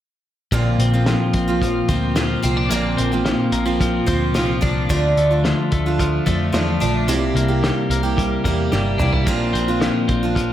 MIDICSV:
0, 0, Header, 1, 5, 480
1, 0, Start_track
1, 0, Tempo, 546448
1, 465, Time_signature, 4, 2, 24, 8
1, 9249, End_track
2, 0, Start_track
2, 0, Title_t, "Steel-string acoustic guitar"
2, 0, Program_c, 0, 25
2, 458, Note_on_c, 0, 46, 74
2, 464, Note_on_c, 0, 50, 82
2, 465, Note_on_c, 0, 53, 80
2, 471, Note_on_c, 0, 58, 89
2, 473, Note_on_c, 0, 60, 75
2, 473, Note_on_c, 0, 65, 82
2, 811, Note_off_c, 0, 65, 0
2, 816, Note_off_c, 0, 60, 0
2, 820, Note_off_c, 0, 58, 0
2, 821, Note_on_c, 0, 65, 58
2, 822, Note_off_c, 0, 46, 0
2, 824, Note_off_c, 0, 50, 0
2, 825, Note_off_c, 0, 53, 0
2, 826, Note_on_c, 0, 60, 53
2, 831, Note_on_c, 0, 58, 43
2, 835, Note_on_c, 0, 53, 43
2, 1293, Note_off_c, 0, 65, 0
2, 1294, Note_off_c, 0, 60, 0
2, 1297, Note_on_c, 0, 65, 53
2, 1300, Note_off_c, 0, 58, 0
2, 1304, Note_on_c, 0, 60, 52
2, 1311, Note_on_c, 0, 58, 47
2, 1313, Note_off_c, 0, 53, 0
2, 1317, Note_on_c, 0, 53, 46
2, 1647, Note_off_c, 0, 53, 0
2, 1655, Note_off_c, 0, 58, 0
2, 1658, Note_on_c, 0, 53, 58
2, 1660, Note_off_c, 0, 60, 0
2, 1661, Note_off_c, 0, 65, 0
2, 1666, Note_on_c, 0, 58, 62
2, 1671, Note_on_c, 0, 60, 62
2, 1676, Note_on_c, 0, 65, 62
2, 1883, Note_off_c, 0, 53, 0
2, 1891, Note_off_c, 0, 58, 0
2, 1893, Note_on_c, 0, 53, 58
2, 1894, Note_off_c, 0, 60, 0
2, 1901, Note_off_c, 0, 65, 0
2, 1902, Note_on_c, 0, 58, 61
2, 1905, Note_on_c, 0, 60, 62
2, 1911, Note_on_c, 0, 65, 58
2, 2120, Note_off_c, 0, 53, 0
2, 2128, Note_off_c, 0, 58, 0
2, 2130, Note_on_c, 0, 53, 59
2, 2136, Note_off_c, 0, 60, 0
2, 2139, Note_on_c, 0, 58, 65
2, 2141, Note_off_c, 0, 65, 0
2, 2146, Note_on_c, 0, 60, 65
2, 2152, Note_on_c, 0, 65, 63
2, 2372, Note_off_c, 0, 53, 0
2, 2376, Note_off_c, 0, 58, 0
2, 2377, Note_on_c, 0, 46, 78
2, 2379, Note_off_c, 0, 65, 0
2, 2380, Note_on_c, 0, 50, 72
2, 2382, Note_off_c, 0, 60, 0
2, 2383, Note_on_c, 0, 53, 80
2, 2387, Note_on_c, 0, 58, 86
2, 2390, Note_on_c, 0, 65, 81
2, 2392, Note_on_c, 0, 60, 78
2, 2728, Note_off_c, 0, 65, 0
2, 2736, Note_off_c, 0, 60, 0
2, 2739, Note_on_c, 0, 65, 50
2, 2741, Note_off_c, 0, 46, 0
2, 2741, Note_off_c, 0, 58, 0
2, 2743, Note_off_c, 0, 50, 0
2, 2744, Note_off_c, 0, 53, 0
2, 2747, Note_on_c, 0, 60, 50
2, 2751, Note_on_c, 0, 58, 51
2, 2757, Note_on_c, 0, 53, 43
2, 3208, Note_off_c, 0, 60, 0
2, 3208, Note_off_c, 0, 65, 0
2, 3211, Note_on_c, 0, 65, 62
2, 3217, Note_off_c, 0, 58, 0
2, 3219, Note_on_c, 0, 60, 48
2, 3226, Note_off_c, 0, 53, 0
2, 3228, Note_on_c, 0, 58, 46
2, 3229, Note_on_c, 0, 53, 45
2, 3559, Note_off_c, 0, 53, 0
2, 3565, Note_off_c, 0, 58, 0
2, 3569, Note_on_c, 0, 53, 65
2, 3571, Note_off_c, 0, 60, 0
2, 3576, Note_on_c, 0, 58, 52
2, 3578, Note_off_c, 0, 65, 0
2, 3582, Note_on_c, 0, 60, 61
2, 3587, Note_on_c, 0, 65, 57
2, 3804, Note_off_c, 0, 53, 0
2, 3813, Note_off_c, 0, 58, 0
2, 3815, Note_on_c, 0, 53, 58
2, 3818, Note_off_c, 0, 60, 0
2, 3822, Note_off_c, 0, 65, 0
2, 3824, Note_on_c, 0, 58, 58
2, 3828, Note_on_c, 0, 60, 61
2, 3833, Note_on_c, 0, 65, 64
2, 4038, Note_off_c, 0, 53, 0
2, 4046, Note_off_c, 0, 58, 0
2, 4048, Note_on_c, 0, 53, 66
2, 4050, Note_off_c, 0, 60, 0
2, 4054, Note_off_c, 0, 65, 0
2, 4056, Note_on_c, 0, 58, 60
2, 4061, Note_on_c, 0, 60, 61
2, 4065, Note_on_c, 0, 65, 61
2, 4293, Note_off_c, 0, 53, 0
2, 4297, Note_off_c, 0, 65, 0
2, 4298, Note_on_c, 0, 50, 69
2, 4301, Note_off_c, 0, 58, 0
2, 4302, Note_off_c, 0, 60, 0
2, 4304, Note_on_c, 0, 53, 81
2, 4306, Note_on_c, 0, 57, 87
2, 4306, Note_on_c, 0, 62, 88
2, 4308, Note_on_c, 0, 65, 88
2, 4650, Note_off_c, 0, 65, 0
2, 4660, Note_off_c, 0, 62, 0
2, 4661, Note_off_c, 0, 50, 0
2, 4661, Note_on_c, 0, 65, 50
2, 4664, Note_off_c, 0, 53, 0
2, 4665, Note_off_c, 0, 57, 0
2, 4670, Note_on_c, 0, 62, 50
2, 4678, Note_on_c, 0, 57, 38
2, 5137, Note_off_c, 0, 65, 0
2, 5143, Note_off_c, 0, 62, 0
2, 5148, Note_on_c, 0, 65, 59
2, 5151, Note_off_c, 0, 57, 0
2, 5154, Note_on_c, 0, 62, 50
2, 5166, Note_on_c, 0, 57, 47
2, 5494, Note_off_c, 0, 57, 0
2, 5499, Note_on_c, 0, 53, 66
2, 5502, Note_off_c, 0, 62, 0
2, 5503, Note_off_c, 0, 65, 0
2, 5504, Note_on_c, 0, 57, 55
2, 5512, Note_on_c, 0, 62, 67
2, 5514, Note_on_c, 0, 65, 57
2, 5721, Note_off_c, 0, 53, 0
2, 5731, Note_off_c, 0, 57, 0
2, 5731, Note_on_c, 0, 53, 61
2, 5736, Note_off_c, 0, 62, 0
2, 5742, Note_off_c, 0, 65, 0
2, 5742, Note_on_c, 0, 57, 60
2, 5747, Note_on_c, 0, 62, 66
2, 5752, Note_on_c, 0, 65, 60
2, 5964, Note_off_c, 0, 53, 0
2, 5973, Note_off_c, 0, 57, 0
2, 5975, Note_on_c, 0, 53, 59
2, 5976, Note_off_c, 0, 62, 0
2, 5984, Note_off_c, 0, 65, 0
2, 5984, Note_on_c, 0, 57, 62
2, 5987, Note_on_c, 0, 62, 61
2, 5995, Note_on_c, 0, 65, 65
2, 6219, Note_off_c, 0, 53, 0
2, 6219, Note_on_c, 0, 48, 71
2, 6222, Note_off_c, 0, 57, 0
2, 6223, Note_on_c, 0, 55, 88
2, 6225, Note_off_c, 0, 62, 0
2, 6226, Note_on_c, 0, 58, 86
2, 6228, Note_off_c, 0, 65, 0
2, 6228, Note_on_c, 0, 64, 96
2, 6231, Note_on_c, 0, 67, 85
2, 6563, Note_off_c, 0, 67, 0
2, 6570, Note_off_c, 0, 64, 0
2, 6574, Note_on_c, 0, 67, 60
2, 6579, Note_off_c, 0, 58, 0
2, 6580, Note_on_c, 0, 64, 43
2, 6581, Note_off_c, 0, 48, 0
2, 6583, Note_off_c, 0, 55, 0
2, 6590, Note_on_c, 0, 58, 40
2, 7043, Note_off_c, 0, 67, 0
2, 7053, Note_off_c, 0, 64, 0
2, 7054, Note_on_c, 0, 67, 53
2, 7063, Note_on_c, 0, 64, 49
2, 7068, Note_off_c, 0, 58, 0
2, 7071, Note_on_c, 0, 58, 44
2, 7418, Note_off_c, 0, 67, 0
2, 7421, Note_off_c, 0, 58, 0
2, 7423, Note_off_c, 0, 64, 0
2, 7426, Note_on_c, 0, 55, 59
2, 7432, Note_on_c, 0, 58, 61
2, 7438, Note_on_c, 0, 64, 59
2, 7444, Note_on_c, 0, 67, 72
2, 7650, Note_off_c, 0, 55, 0
2, 7657, Note_off_c, 0, 58, 0
2, 7660, Note_off_c, 0, 64, 0
2, 7660, Note_on_c, 0, 55, 60
2, 7665, Note_off_c, 0, 67, 0
2, 7667, Note_on_c, 0, 58, 67
2, 7670, Note_on_c, 0, 64, 65
2, 7676, Note_on_c, 0, 67, 60
2, 7888, Note_off_c, 0, 55, 0
2, 7894, Note_off_c, 0, 58, 0
2, 7899, Note_on_c, 0, 55, 65
2, 7900, Note_off_c, 0, 64, 0
2, 7905, Note_on_c, 0, 58, 61
2, 7909, Note_off_c, 0, 67, 0
2, 7910, Note_on_c, 0, 64, 58
2, 7918, Note_on_c, 0, 67, 68
2, 8140, Note_off_c, 0, 55, 0
2, 8142, Note_on_c, 0, 46, 79
2, 8144, Note_off_c, 0, 58, 0
2, 8146, Note_off_c, 0, 64, 0
2, 8146, Note_on_c, 0, 53, 77
2, 8150, Note_off_c, 0, 67, 0
2, 8151, Note_on_c, 0, 60, 76
2, 8154, Note_on_c, 0, 62, 81
2, 8154, Note_on_c, 0, 65, 82
2, 8494, Note_off_c, 0, 65, 0
2, 8502, Note_off_c, 0, 46, 0
2, 8502, Note_off_c, 0, 62, 0
2, 8504, Note_off_c, 0, 53, 0
2, 8504, Note_on_c, 0, 65, 60
2, 8506, Note_off_c, 0, 60, 0
2, 8512, Note_on_c, 0, 62, 50
2, 8525, Note_on_c, 0, 60, 45
2, 8981, Note_off_c, 0, 65, 0
2, 8984, Note_on_c, 0, 65, 54
2, 8992, Note_off_c, 0, 62, 0
2, 8993, Note_off_c, 0, 60, 0
2, 8995, Note_on_c, 0, 62, 49
2, 9005, Note_on_c, 0, 60, 43
2, 9249, Note_off_c, 0, 60, 0
2, 9249, Note_off_c, 0, 62, 0
2, 9249, Note_off_c, 0, 65, 0
2, 9249, End_track
3, 0, Start_track
3, 0, Title_t, "Clean electric guitar"
3, 0, Program_c, 1, 27
3, 461, Note_on_c, 1, 46, 83
3, 704, Note_on_c, 1, 60, 58
3, 944, Note_on_c, 1, 53, 49
3, 1169, Note_off_c, 1, 60, 0
3, 1180, Note_on_c, 1, 60, 52
3, 1415, Note_off_c, 1, 53, 0
3, 1419, Note_on_c, 1, 53, 62
3, 1647, Note_off_c, 1, 60, 0
3, 1657, Note_on_c, 1, 60, 64
3, 1891, Note_off_c, 1, 53, 0
3, 1894, Note_on_c, 1, 53, 60
3, 2129, Note_off_c, 1, 60, 0
3, 2140, Note_on_c, 1, 60, 59
3, 2256, Note_off_c, 1, 60, 0
3, 2256, Note_on_c, 1, 62, 56
3, 2355, Note_off_c, 1, 46, 0
3, 2366, Note_on_c, 1, 46, 82
3, 2611, Note_on_c, 1, 60, 58
3, 2850, Note_off_c, 1, 53, 0
3, 2853, Note_on_c, 1, 53, 51
3, 3092, Note_off_c, 1, 60, 0
3, 3096, Note_on_c, 1, 58, 61
3, 3212, Note_off_c, 1, 58, 0
3, 3212, Note_on_c, 1, 60, 49
3, 3336, Note_off_c, 1, 53, 0
3, 3340, Note_on_c, 1, 53, 58
3, 3564, Note_off_c, 1, 60, 0
3, 3575, Note_on_c, 1, 60, 62
3, 3817, Note_off_c, 1, 53, 0
3, 3820, Note_on_c, 1, 53, 57
3, 4049, Note_off_c, 1, 62, 0
3, 4060, Note_on_c, 1, 62, 64
3, 4295, Note_off_c, 1, 46, 0
3, 4304, Note_on_c, 1, 50, 75
3, 4348, Note_off_c, 1, 60, 0
3, 4545, Note_on_c, 1, 57, 55
3, 4774, Note_off_c, 1, 53, 0
3, 4778, Note_on_c, 1, 53, 53
3, 5012, Note_off_c, 1, 57, 0
3, 5023, Note_on_c, 1, 57, 59
3, 5253, Note_off_c, 1, 53, 0
3, 5263, Note_on_c, 1, 53, 54
3, 5488, Note_off_c, 1, 57, 0
3, 5499, Note_on_c, 1, 57, 60
3, 5724, Note_off_c, 1, 53, 0
3, 5735, Note_on_c, 1, 53, 60
3, 5978, Note_off_c, 1, 62, 0
3, 5982, Note_on_c, 1, 62, 64
3, 6212, Note_off_c, 1, 50, 0
3, 6216, Note_on_c, 1, 48, 78
3, 6267, Note_off_c, 1, 53, 0
3, 6269, Note_off_c, 1, 57, 0
3, 6271, Note_off_c, 1, 62, 0
3, 6461, Note_on_c, 1, 58, 55
3, 6700, Note_on_c, 1, 55, 52
3, 6939, Note_off_c, 1, 58, 0
3, 6942, Note_on_c, 1, 58, 55
3, 7165, Note_off_c, 1, 55, 0
3, 7176, Note_on_c, 1, 55, 58
3, 7412, Note_off_c, 1, 58, 0
3, 7416, Note_on_c, 1, 58, 59
3, 7648, Note_off_c, 1, 55, 0
3, 7658, Note_on_c, 1, 55, 58
3, 7889, Note_on_c, 1, 62, 64
3, 8015, Note_off_c, 1, 62, 0
3, 8015, Note_on_c, 1, 64, 55
3, 8132, Note_on_c, 1, 46, 82
3, 8138, Note_off_c, 1, 48, 0
3, 8187, Note_off_c, 1, 64, 0
3, 8188, Note_off_c, 1, 55, 0
3, 8369, Note_off_c, 1, 58, 0
3, 8372, Note_on_c, 1, 60, 59
3, 8611, Note_on_c, 1, 53, 55
3, 8844, Note_off_c, 1, 60, 0
3, 8855, Note_on_c, 1, 60, 53
3, 9089, Note_off_c, 1, 53, 0
3, 9092, Note_on_c, 1, 53, 56
3, 9249, Note_off_c, 1, 46, 0
3, 9249, Note_off_c, 1, 53, 0
3, 9249, Note_off_c, 1, 60, 0
3, 9249, End_track
4, 0, Start_track
4, 0, Title_t, "Picked electric bass"
4, 0, Program_c, 2, 34
4, 456, Note_on_c, 2, 34, 80
4, 664, Note_off_c, 2, 34, 0
4, 691, Note_on_c, 2, 34, 85
4, 1003, Note_off_c, 2, 34, 0
4, 1180, Note_on_c, 2, 34, 92
4, 1590, Note_off_c, 2, 34, 0
4, 1658, Note_on_c, 2, 38, 79
4, 2069, Note_off_c, 2, 38, 0
4, 2145, Note_on_c, 2, 36, 86
4, 2349, Note_off_c, 2, 36, 0
4, 2373, Note_on_c, 2, 34, 97
4, 2582, Note_off_c, 2, 34, 0
4, 2623, Note_on_c, 2, 34, 83
4, 2930, Note_off_c, 2, 34, 0
4, 3097, Note_on_c, 2, 34, 93
4, 3508, Note_off_c, 2, 34, 0
4, 3580, Note_on_c, 2, 38, 88
4, 3821, Note_off_c, 2, 38, 0
4, 3821, Note_on_c, 2, 36, 88
4, 4026, Note_off_c, 2, 36, 0
4, 4061, Note_on_c, 2, 36, 77
4, 4267, Note_off_c, 2, 36, 0
4, 4303, Note_on_c, 2, 38, 98
4, 4508, Note_off_c, 2, 38, 0
4, 4543, Note_on_c, 2, 38, 90
4, 4850, Note_off_c, 2, 38, 0
4, 5030, Note_on_c, 2, 38, 96
4, 5435, Note_off_c, 2, 38, 0
4, 5503, Note_on_c, 2, 41, 81
4, 5707, Note_off_c, 2, 41, 0
4, 5744, Note_on_c, 2, 40, 81
4, 5948, Note_off_c, 2, 40, 0
4, 5993, Note_on_c, 2, 34, 77
4, 6193, Note_off_c, 2, 34, 0
4, 6218, Note_on_c, 2, 36, 90
4, 6424, Note_off_c, 2, 36, 0
4, 6456, Note_on_c, 2, 36, 87
4, 6765, Note_off_c, 2, 36, 0
4, 6939, Note_on_c, 2, 36, 88
4, 7349, Note_off_c, 2, 36, 0
4, 7421, Note_on_c, 2, 40, 85
4, 7626, Note_off_c, 2, 40, 0
4, 7669, Note_on_c, 2, 31, 80
4, 7870, Note_off_c, 2, 31, 0
4, 7897, Note_on_c, 2, 36, 80
4, 8143, Note_off_c, 2, 36, 0
4, 8143, Note_on_c, 2, 34, 83
4, 8347, Note_off_c, 2, 34, 0
4, 8380, Note_on_c, 2, 34, 74
4, 8687, Note_off_c, 2, 34, 0
4, 8863, Note_on_c, 2, 34, 81
4, 9249, Note_off_c, 2, 34, 0
4, 9249, End_track
5, 0, Start_track
5, 0, Title_t, "Drums"
5, 458, Note_on_c, 9, 36, 96
5, 458, Note_on_c, 9, 42, 91
5, 545, Note_off_c, 9, 36, 0
5, 546, Note_off_c, 9, 42, 0
5, 700, Note_on_c, 9, 42, 64
5, 788, Note_off_c, 9, 42, 0
5, 934, Note_on_c, 9, 38, 110
5, 937, Note_on_c, 9, 42, 83
5, 1022, Note_off_c, 9, 38, 0
5, 1025, Note_off_c, 9, 42, 0
5, 1173, Note_on_c, 9, 42, 76
5, 1179, Note_on_c, 9, 36, 81
5, 1261, Note_off_c, 9, 42, 0
5, 1267, Note_off_c, 9, 36, 0
5, 1420, Note_on_c, 9, 36, 87
5, 1427, Note_on_c, 9, 42, 101
5, 1508, Note_off_c, 9, 36, 0
5, 1515, Note_off_c, 9, 42, 0
5, 1657, Note_on_c, 9, 42, 66
5, 1660, Note_on_c, 9, 36, 86
5, 1745, Note_off_c, 9, 42, 0
5, 1748, Note_off_c, 9, 36, 0
5, 1896, Note_on_c, 9, 38, 95
5, 1898, Note_on_c, 9, 42, 92
5, 1984, Note_off_c, 9, 38, 0
5, 1986, Note_off_c, 9, 42, 0
5, 2137, Note_on_c, 9, 42, 62
5, 2225, Note_off_c, 9, 42, 0
5, 2377, Note_on_c, 9, 42, 91
5, 2465, Note_off_c, 9, 42, 0
5, 2621, Note_on_c, 9, 42, 60
5, 2709, Note_off_c, 9, 42, 0
5, 2860, Note_on_c, 9, 38, 99
5, 2863, Note_on_c, 9, 42, 88
5, 2948, Note_off_c, 9, 38, 0
5, 2950, Note_off_c, 9, 42, 0
5, 3095, Note_on_c, 9, 42, 74
5, 3183, Note_off_c, 9, 42, 0
5, 3344, Note_on_c, 9, 36, 92
5, 3347, Note_on_c, 9, 42, 101
5, 3431, Note_off_c, 9, 36, 0
5, 3435, Note_off_c, 9, 42, 0
5, 3579, Note_on_c, 9, 42, 70
5, 3583, Note_on_c, 9, 36, 84
5, 3667, Note_off_c, 9, 42, 0
5, 3671, Note_off_c, 9, 36, 0
5, 3820, Note_on_c, 9, 38, 103
5, 3821, Note_on_c, 9, 42, 92
5, 3907, Note_off_c, 9, 38, 0
5, 3909, Note_off_c, 9, 42, 0
5, 4061, Note_on_c, 9, 42, 60
5, 4065, Note_on_c, 9, 36, 84
5, 4148, Note_off_c, 9, 42, 0
5, 4153, Note_off_c, 9, 36, 0
5, 4305, Note_on_c, 9, 36, 109
5, 4305, Note_on_c, 9, 42, 93
5, 4393, Note_off_c, 9, 36, 0
5, 4393, Note_off_c, 9, 42, 0
5, 4545, Note_on_c, 9, 42, 58
5, 4633, Note_off_c, 9, 42, 0
5, 4786, Note_on_c, 9, 38, 100
5, 4789, Note_on_c, 9, 42, 81
5, 4874, Note_off_c, 9, 38, 0
5, 4877, Note_off_c, 9, 42, 0
5, 5023, Note_on_c, 9, 42, 73
5, 5029, Note_on_c, 9, 36, 84
5, 5110, Note_off_c, 9, 42, 0
5, 5117, Note_off_c, 9, 36, 0
5, 5266, Note_on_c, 9, 36, 91
5, 5269, Note_on_c, 9, 42, 98
5, 5354, Note_off_c, 9, 36, 0
5, 5357, Note_off_c, 9, 42, 0
5, 5506, Note_on_c, 9, 42, 73
5, 5508, Note_on_c, 9, 36, 81
5, 5594, Note_off_c, 9, 42, 0
5, 5596, Note_off_c, 9, 36, 0
5, 5746, Note_on_c, 9, 38, 102
5, 5748, Note_on_c, 9, 42, 93
5, 5834, Note_off_c, 9, 38, 0
5, 5835, Note_off_c, 9, 42, 0
5, 5988, Note_on_c, 9, 42, 59
5, 6076, Note_off_c, 9, 42, 0
5, 6229, Note_on_c, 9, 42, 89
5, 6316, Note_off_c, 9, 42, 0
5, 6471, Note_on_c, 9, 42, 62
5, 6559, Note_off_c, 9, 42, 0
5, 6709, Note_on_c, 9, 38, 102
5, 6711, Note_on_c, 9, 42, 82
5, 6796, Note_off_c, 9, 38, 0
5, 6799, Note_off_c, 9, 42, 0
5, 6947, Note_on_c, 9, 42, 69
5, 7035, Note_off_c, 9, 42, 0
5, 7186, Note_on_c, 9, 36, 91
5, 7193, Note_on_c, 9, 42, 99
5, 7274, Note_off_c, 9, 36, 0
5, 7281, Note_off_c, 9, 42, 0
5, 7424, Note_on_c, 9, 36, 93
5, 7425, Note_on_c, 9, 42, 72
5, 7512, Note_off_c, 9, 36, 0
5, 7513, Note_off_c, 9, 42, 0
5, 7664, Note_on_c, 9, 38, 51
5, 7752, Note_off_c, 9, 38, 0
5, 7902, Note_on_c, 9, 45, 85
5, 7990, Note_off_c, 9, 45, 0
5, 8022, Note_on_c, 9, 43, 74
5, 8110, Note_off_c, 9, 43, 0
5, 8140, Note_on_c, 9, 42, 90
5, 8143, Note_on_c, 9, 36, 100
5, 8228, Note_off_c, 9, 42, 0
5, 8230, Note_off_c, 9, 36, 0
5, 8391, Note_on_c, 9, 42, 56
5, 8479, Note_off_c, 9, 42, 0
5, 8621, Note_on_c, 9, 38, 100
5, 8624, Note_on_c, 9, 42, 81
5, 8709, Note_off_c, 9, 38, 0
5, 8712, Note_off_c, 9, 42, 0
5, 8860, Note_on_c, 9, 42, 72
5, 8865, Note_on_c, 9, 36, 80
5, 8948, Note_off_c, 9, 42, 0
5, 8952, Note_off_c, 9, 36, 0
5, 9102, Note_on_c, 9, 36, 92
5, 9110, Note_on_c, 9, 42, 98
5, 9190, Note_off_c, 9, 36, 0
5, 9197, Note_off_c, 9, 42, 0
5, 9249, End_track
0, 0, End_of_file